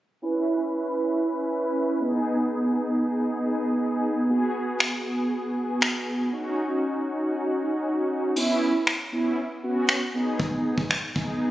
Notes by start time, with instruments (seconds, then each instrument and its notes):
0.22 analog polysynth C#4 E4 B4
2.00 analog polysynth B3 D#4 G#4
4.29 analog polysynth B3 F#4 G#4
4.80 finger snap
5.82 finger snap
6.33 analog polysynth C#4 D#4 F#4
8.36 analog polysynth B3 C#4 E4, crash
8.87 finger snap
9.12 analog polysynth B3 C#4 E4
9.63 analog polysynth B3 C#4 F#4
9.89 finger snap
10.14 analog polysynth B3 D#4 G#4
10.40 kick
10.78 kick
10.91 finger snap
11.03 analog polysynth D#4 G#4
11.16 analog polysynth B3 D#4 G#4, kick